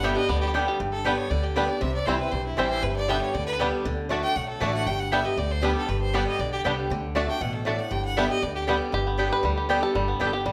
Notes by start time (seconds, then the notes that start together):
Already playing: G1 G2 B3 D4
0.03 D3 G3 B3 G4 D5 E5 G5
0.15 B3 D4 G4 D#5
0.29 D2 D3 B3 D5
0.41 G3 G4
0.54 D3 G3 B3 D4 G4 D5 G5
0.68 G4
0.80 G1 G2
0.92 A4
1.05 D3 G3 B3 D4 G4 B4 D5 G5
1.18 C#5
1.30 D2 D3 D5
1.44 G4
1.56 D3 G3 B3 D4 G4 B4 D5 G5
1.68 B3 G4 D5
1.81 C2 C3 E5
1.94 D5
2.06 C2 E3 G3 C4 E4 C5 G5
2.19 C4 E4 B4
2.32 B1 G2 C5
2.46 E4
2.57 A1 E3 G3 C4 E4 G4 C5 G5
2.70 C5
2.83 G1 G2 B4
2.96 D5
3.08 D3 G3 B3 D4 G4 D5 E5 G5
3.21 C#5
3.34 D2 D3 D5
3.47 B4
3.59 D3 G3 B3 D4 G4 D5 G5
3.85 D2 D3
4.09 D3 A3 D4 F#4 D5 A5
4.23 G5
4.36 B1 A2 F#5
4.49 A4
4.60 A1 D3 A3 D4 F#4 D5 A5
4.74 F#5
4.87 G1 G2 G5
5.00 F#5
5.12 D3 G3 B3 D4 G4 D5 E5 G5
5.24 B3 G4 D#5
5.37 D2 D3 D5
5.51 C5
5.61 D3 G3 B3 D4 G4 B4 D5 G5
5.77 A4
5.88 G1 G2 B4
6.01 C5
6.13 D3 G3 B3 D4 G4 D5 G5
6.27 D#5
6.39 B1 D3 D5
6.52 G4
6.64 C2 D3 G3 B3 D4 G4 D5 G5
6.90 D2 D3
7.15 D3 A3 D4 F#4 D5 A5
7.28 D4 F#4 G5
7.41 A1 B2 F#5
7.55 A4
7.65 A2 A3 D4 F#4 D5 A5
7.79 F#5
7.91 G1 G2 G5
8.05 F#5
8.17 D3 G3 B3 D4 G4 D5 E5 G5
8.30 B3 G4 D#5
8.42 D2 D3 D5
8.55 G4
8.67 D3 G3 B3 D4 G4 D5 G5
8.92 G1 G2 G4
9.07 B3
9.18 D3 G3 B3 D4 G4 D5 G5
9.33 B4
9.43 D2 D3 G3
9.57 G4
9.69 D3 G3 B3 G4 D5 G5
9.82 B3 G4 A4
9.95 G1 G2 G3
10.08 B3
10.20 G1 D3 G3 B3 D4 G4 D5 G5
10.27 A4
10.32 B3 G4
10.46 A1 D3 G3